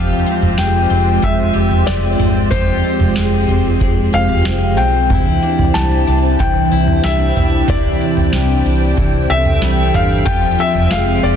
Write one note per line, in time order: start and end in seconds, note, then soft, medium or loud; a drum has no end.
0.00 0.23 F1 medium
0.00 2.50 F3 medium
0.00 0.58 G3 medium
0.00 5.07 G#3 medium
0.00 10.23 C4 medium
0.00 5.06 F4 medium
0.00 1.53 G4 medium
0.00 2.48 G4 medium
0.00 11.36 C5 medium
0.00 0.61 F5 medium
0.26 0.89 C4 medium
0.42 0.57 F1 medium
0.42 floor tom medium
0.58 0.87 F1 medium
0.58 1.21 G#3 medium
0.58 1.25 G5 medium
0.58 snare loud
0.90 1.19 F1 medium
0.90 2.19 C4 soft
1.22 1.51 F1 medium
1.22 1.85 G#3 medium
1.22 1.90 E5 medium
1.22 kick medium
1.22 floor tom medium
1.53 1.84 F1 medium
1.53 2.52 G4 medium
1.71 floor tom medium
1.86 2.16 F1 medium
1.86 3.15 G#3 soft
1.86 2.54 D5 medium
1.86 snare medium
2.19 2.48 G1 medium
2.19 2.83 C4 soft
2.19 floor tom medium
2.51 2.80 F1 medium
2.51 5.10 F3 medium
2.51 4.12 G4 medium
2.51 5.08 G4 medium
2.51 4.18 C5 medium
2.51 kick medium
2.51 floor tom loud
2.84 3.48 C4 medium
3.00 3.15 F1 medium
3.00 floor tom medium
3.16 3.45 F1 medium
3.16 3.80 G#3 soft
3.16 snare medium
3.48 3.78 F1 medium
3.48 4.77 C4 soft
3.48 floor tom medium
3.80 4.09 F1 medium
3.80 4.44 G#3 medium
3.80 kick medium
3.80 floor tom medium
4.13 4.42 F1 medium
4.13 5.11 G4 medium
4.13 4.80 F5 loud
4.29 floor tom medium
4.45 4.79 F1 medium
4.45 5.17 G#3 medium
4.45 snare medium
4.77 5.07 B1 medium
4.77 5.42 C4 medium
4.77 5.77 G5 medium
5.10 5.39 C2 medium
5.10 10.22 E3 medium
5.10 10.22 D4 medium
5.10 6.70 E4 medium
5.10 11.36 G5 medium
5.10 kick loud
5.10 floor tom loud
5.42 6.06 D4 medium
5.42 7.22 G4 soft
5.59 5.73 C2 medium
5.59 floor tom medium
5.74 6.04 C2 medium
5.74 7.04 G3 medium
5.74 6.41 A5 medium
5.74 snare medium
6.07 6.36 C2 medium
6.07 7.36 D4 medium
6.39 6.68 C2 medium
6.39 8.96 E3 medium
6.39 7.00 G5 medium
6.39 kick medium
6.39 floor tom medium
6.71 7.00 C2 medium
6.71 7.68 E4 medium
6.88 floor tom medium
7.04 7.32 C2 medium
7.04 8.33 G3 medium
7.04 7.70 E5 medium
7.04 snare loud
7.36 7.65 B1 medium
7.36 8.00 D4 medium
7.36 floor tom medium
7.68 7.97 C2 medium
7.68 10.26 C3 medium
7.68 9.30 E4 medium
7.68 9.35 D5 medium
7.68 kick loud
7.68 floor tom medium
8.01 8.64 D4 soft
8.17 8.31 C2 medium
8.17 floor tom medium
8.33 8.61 C2 medium
8.33 9.61 G3 medium
8.33 snare medium
8.66 8.94 C2 medium
8.66 9.93 D4 soft
8.97 9.26 C2 medium
8.97 10.25 E3 medium
8.97 kick medium
8.97 floor tom medium
9.30 9.58 C2 medium
9.30 9.96 E5 loud
9.34 10.55 A4 medium
9.45 floor tom medium
9.62 9.90 C2 medium
9.62 10.91 G3 medium
9.62 snare medium
9.94 10.23 G1 medium
9.94 10.33 D4 medium
9.94 10.28 F5 medium
9.94 floor tom medium
10.25 11.36 F3 medium
10.25 11.36 C4 medium
10.25 11.36 F4 medium
10.25 11.36 G4 medium
10.25 10.59 G5 medium
10.25 kick loud
10.25 floor tom medium
10.44 11.36 F4 medium
10.58 11.22 C4 medium
10.58 10.93 E5 medium
10.75 10.89 F1 medium
10.75 floor tom medium
10.91 11.36 G#3 medium
10.91 11.36 C4 medium
10.91 11.25 F5 medium
10.91 snare loud
11.23 11.36 F1 medium
11.23 11.36 C4 soft
11.23 11.36 D5 medium